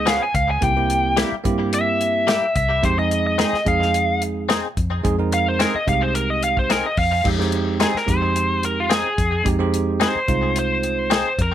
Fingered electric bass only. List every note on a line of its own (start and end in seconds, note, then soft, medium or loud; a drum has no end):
0.00 0.19 C#2 medium
0.35 0.58 C#2 medium
0.62 1.22 C2 medium
1.32 muted fingered electric bass stroke soft
1.45 2.40 G2 medium
2.56 2.79 C2 loud
2.84 3.43 F2 medium
3.53 muted fingered electric bass stroke soft
3.66 4.61 F2 medium
4.77 5.01 F2 medium
5.05 5.65 F2 medium
5.75 muted fingered electric bass stroke soft
5.88 6.82 C2 medium
6.98 7.21 F2 loud
7.25 7.85 F2 medium
7.95 muted fingered electric bass stroke soft
8.08 9.02 F2 medium
9.18 9.42 F2 medium
9.46 10.06 F2 medium
10.15 muted fingered electric bass stroke soft
10.29 11.23 C2 medium
11.38 11.54 F2 medium